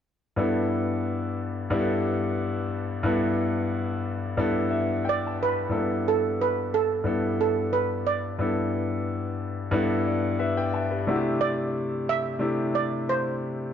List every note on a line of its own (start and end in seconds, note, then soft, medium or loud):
0.36 1.27 G2 medium
0.36 1.28 B3 medium
0.36 1.28 D4 medium
0.36 1.28 E4 medium
0.36 1.29 A4 medium
1.70 2.61 G2 medium
1.70 2.61 B3 medium
1.70 2.62 D4 medium
1.70 2.62 E4 medium
1.70 1.79 G4 medium
1.79 2.65 A4 medium
3.03 3.94 G2 medium
3.03 3.94 B3 medium
3.03 3.95 D4 medium
3.03 3.95 E4 medium
3.03 3.95 A4 medium
4.37 5.28 G2 medium
4.37 5.28 B3 medium
4.37 5.28 D4 medium
4.37 5.29 E4 medium
4.37 5.29 A4 medium
4.71 5.02 E5 medium
5.05 5.26 G5 medium
5.09 5.42 D5 medium
5.27 5.48 A5 medium
5.43 6.09 B4 medium
5.48 5.70 B5 medium
5.69 6.61 G2 medium
5.69 5.78 A#3 soft
5.69 6.61 D4 medium
5.69 6.62 E4 medium
5.69 6.62 A4 medium
5.77 6.65 B3 medium
6.08 6.41 A4 medium
6.41 6.75 B4 medium
6.74 7.36 A4 medium
7.04 7.95 G2 medium
7.04 7.95 B3 medium
7.04 7.95 D4 medium
7.04 7.96 E4 medium
7.04 7.96 A4 medium
7.41 7.74 A4 medium
7.73 7.88 B4 medium
8.07 9.36 D5 medium
8.39 9.29 G2 medium
8.39 9.29 B3 medium
8.39 9.29 D4 medium
8.39 9.30 E4 medium
8.39 9.30 A4 medium
9.71 10.62 G2 medium
9.71 10.63 B3 medium
9.71 10.63 D4 medium
9.71 10.63 E4 medium
9.71 10.40 A4 medium
10.07 10.38 D5 medium
10.39 10.56 G4 soft
10.39 10.56 B4 medium
10.39 10.55 E5 medium
10.57 10.73 B4 medium
10.57 10.73 D5 medium
10.57 10.72 G5 medium
10.74 10.89 E5 medium
10.74 11.05 A5 medium
10.91 11.14 G4 soft
10.91 11.22 B4 medium
11.07 11.97 C3 medium
11.07 11.97 A3 medium
11.07 11.97 D4 medium
11.07 11.98 E4 medium
11.07 11.14 F#4 medium
11.15 12.01 G4 medium
11.41 12.09 D5 medium
12.09 12.71 E5 loud
12.39 13.30 C3 medium
12.39 13.30 A3 medium
12.39 13.30 D4 medium
12.39 13.30 E4 medium
12.39 13.31 G4 medium
12.75 13.09 D5 medium
13.09 13.73 C5 medium